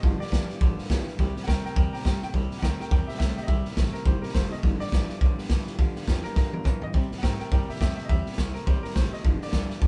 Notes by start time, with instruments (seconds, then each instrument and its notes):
Already playing: upright piano D#5
0.03 upright bass G1, steel-string acoustic guitar G2 D3 F3 B3 F4 G4, kick, snare
0.19 steel-string acoustic guitar F3 B3 F4 G4, upright piano D5, muted upright bass stroke, snare
0.26 snare
0.32 upright bass F1, steel-string acoustic guitar G2 D3 F3 B3 F4 G4, clean electric guitar E3, kick, snare, hi-hat pedal
0.49 steel-string acoustic guitar F3 B3 F4 G4, muted upright bass stroke, snare
0.61 upright bass A1, clean electric guitar G2 D3, steel-string acoustic guitar F3 B3 F4 G4, kick, snare
0.78 steel-string acoustic guitar F3 B3 F4 G4, muted upright bass stroke, snare
0.84 snare
0.90 upright bass B1, steel-string acoustic guitar G2 D3 F3 B3 F4 G4, clean electric guitar E3, kick, snare, hi-hat pedal
1.07 steel-string acoustic guitar F3 B3 F4 G4, muted upright bass stroke, snare
1.18 upright bass C2, steel-string acoustic guitar C3 G3 C4 E4 G4, kick, snare
1.35 steel-string acoustic guitar C4 E4 G4, muted upright bass stroke, snare
1.42 upright piano F#5, snare
1.47 upright bass D2, steel-string acoustic guitar C3 G3 C4 E4 G4, clean electric guitar A3, upright piano A#4 G5, kick, snare, hi-hat pedal
1.64 steel-string acoustic guitar C4 E4 G4, upright piano A#4 G5, muted upright bass stroke, snare
1.75 upright bass E2, clean electric guitar C3, steel-string acoustic guitar G3 C4 E4 G4, upright piano A#4 G5, kick, snare
1.92 steel-string acoustic guitar C4 E4 G4, upright piano G5 A#5, muted upright bass stroke, snare
1.99 snare
2.04 upright bass G2, steel-string acoustic guitar C3 G3 C4 E4 G4, clean electric guitar A3, upright piano G5 A#5, kick, snare, hi-hat pedal
2.20 steel-string acoustic guitar C4 E4 G4, upright piano G5, muted upright bass stroke, snare
2.32 upright bass C2, steel-string acoustic guitar C3 G3 C4 E4 G4, kick, snare
2.49 steel-string acoustic guitar C4 E4 G4, muted upright bass stroke, snare
2.57 steel-string acoustic guitar C3 G3, upright piano F#5, snare
2.62 upright bass D2, clean electric guitar A3, steel-string acoustic guitar C4 E4 G4, upright piano A#4 G5, kick, snare, hi-hat pedal
2.78 steel-string acoustic guitar C4 E4 G4, upright piano A#4 G5, muted upright bass stroke, snare
2.89 upright bass E2, clean electric guitar C3, steel-string acoustic guitar G3 C4 E4 G4, upright piano A#4 G5, kick, snare
3.06 steel-string acoustic guitar C4 E4 G4, upright piano G4 E5, muted upright bass stroke, snare
3.14 steel-string acoustic guitar C3 G3 C4 E4, snare
3.19 upright bass B1, clean electric guitar A3, upright piano G4 E5, steel-string acoustic guitar G4, kick, snare, hi-hat pedal
3.35 steel-string acoustic guitar C4 E4 G4, upright piano G4 E5, muted upright bass stroke, snare
3.43 steel-string acoustic guitar C3, upright piano D#5
3.47 upright bass C2, steel-string acoustic guitar G3 C4 E4 G4, upright piano E5, kick, snare
3.64 steel-string acoustic guitar C4 E4 G4, muted upright bass stroke, snare
3.71 snare
3.76 upright bass A1, steel-string acoustic guitar C3 G3 C4 E4 G4, clean electric guitar A3, kick, snare, hi-hat pedal
3.92 steel-string acoustic guitar C4 E4 G4, upright piano A#4, muted upright bass stroke, snare
4.05 upright bass G1, clean electric guitar C3, steel-string acoustic guitar G3 C4 E4 G4, upright piano C5, kick, snare
4.21 steel-string acoustic guitar C4 E4 G4, upright piano A#4, muted upright bass stroke, snare
4.28 snare
4.33 upright bass F1, steel-string acoustic guitar C3 G3 C4 E4 G4, clean electric guitar A3, upright piano C5, kick, snare, hi-hat pedal
4.50 steel-string acoustic guitar C4 E4 G4, upright piano D#5, muted upright bass stroke, snare
4.62 upright bass G1, steel-string acoustic guitar G2 D3 F3 B3 F4 G4, kick, snare
4.79 steel-string acoustic guitar F3 B3 F4 G4, upright piano D5, muted upright bass stroke, snare
4.87 snare
4.91 upright bass A1, steel-string acoustic guitar G2 D3 F3 B3 F4 G4, clean electric guitar E3, kick, snare, hi-hat pedal
5.09 steel-string acoustic guitar F3 B3 F4 G4, muted upright bass stroke, snare
5.20 upright bass B1, clean electric guitar G2 D3, steel-string acoustic guitar F3 B3 F4 G4, kick, snare
5.37 steel-string acoustic guitar F3 B3 F4 G4, muted upright bass stroke, snare
5.44 snare
5.49 upright bass C2, steel-string acoustic guitar G2 D3 F3 B3 F4 G4, clean electric guitar E3, kick, snare, hi-hat pedal
5.67 steel-string acoustic guitar F3 B3 F4 G4, muted upright bass stroke, snare
5.78 upright bass D2, steel-string acoustic guitar G2 D3 F3 B3 F4 G4, kick, snare
5.95 steel-string acoustic guitar F3 B3 F4 G4, muted upright bass stroke, snare
6.02 snare
6.06 upright bass F2, steel-string acoustic guitar G2 D3 F3 B3 F4 G4, clean electric guitar E3, kick, snare, hi-hat pedal
6.24 steel-string acoustic guitar F3 B3 F4 G4, upright piano A#4, muted upright bass stroke, snare
6.35 upright bass G2, clean electric guitar G2 D3, steel-string acoustic guitar F3 B3 F4 G4, upright piano A#4, kick, snare
6.52 steel-string acoustic guitar F3 B3 F4 G4, upright piano A#4, muted upright bass stroke, high tom
6.63 steel-string acoustic guitar G2 D3 F3 B3 F4 G4, upright bass B2, clean electric guitar E3, upright piano A#4, kick, hi-hat pedal, mid tom
6.80 steel-string acoustic guitar F3 B3 F4 G4, upright piano D#5, muted upright bass stroke, floor tom
6.92 steel-string acoustic guitar C3 G3 C4 E4 G4, upright bass C3, kick, snare
7.09 steel-string acoustic guitar C4 E4 G4, muted upright bass stroke, snare
7.18 steel-string acoustic guitar C3, upright piano F#5, snare
7.22 upright bass G#2, steel-string acoustic guitar G3 C4 E4 G4, clean electric guitar A3, upright piano A#4 G5, kick, snare, hi-hat pedal
7.39 steel-string acoustic guitar C4 E4 G4, upright piano A#4 G5, muted upright bass stroke, snare
7.51 upright bass G2, clean electric guitar C3, steel-string acoustic guitar G3 C4 E4 G4, upright piano A#4 G5, kick, snare
7.68 steel-string acoustic guitar C4 E4 G4, upright piano G4 E5, muted upright bass stroke, snare
7.75 steel-string acoustic guitar C3, snare
7.79 upright bass F2, steel-string acoustic guitar G3 C4 E4 G4, clean electric guitar A3, upright piano G4 E5, kick, snare, hi-hat pedal
7.95 steel-string acoustic guitar C4 E4 G4, upright piano G4 E5, muted upright bass stroke, snare
8.05 steel-string acoustic guitar C3 G3, upright piano D#5
8.09 upright bass E2, steel-string acoustic guitar C4 E4 G4, upright piano E5, kick, snare
8.25 steel-string acoustic guitar C4 E4 G4, muted upright bass stroke, snare
8.32 snare
8.37 upright bass C2, steel-string acoustic guitar C3 G3 C4 E4 G4, clean electric guitar A3, kick, snare, hi-hat pedal
8.54 steel-string acoustic guitar C4 E4 G4, upright piano A#4, muted upright bass stroke, snare
8.65 upright bass B1, clean electric guitar C3, steel-string acoustic guitar G3 C4 E4 G4, upright piano C5, kick, snare
8.81 steel-string acoustic guitar C4 E4 G4, upright piano A#4, muted upright bass stroke, snare
8.90 snare
8.94 upright bass A1, steel-string acoustic guitar C3 G3 C4 E4 G4, clean electric guitar A3, upright piano C5, kick, snare, hi-hat pedal
9.10 steel-string acoustic guitar C4 E4 G4, upright piano D#5, muted upright bass stroke, snare
9.22 upright bass G1, steel-string acoustic guitar G2 D3 F3 B3 F4 G4, kick, snare
9.39 steel-string acoustic guitar F3 B3 F4 G4, muted upright bass stroke, snare
9.43 upright piano D5, snare
9.52 upright bass C2, steel-string acoustic guitar G2 D3 F3 B3 F4 G4, clean electric guitar E3, kick, snare, hi-hat pedal
9.68 steel-string acoustic guitar F3 B3 F4 G4, muted upright bass stroke, snare
9.80 upright bass B1, clean electric guitar G2 D3, steel-string acoustic guitar F3 B3 F4 G4, kick, snare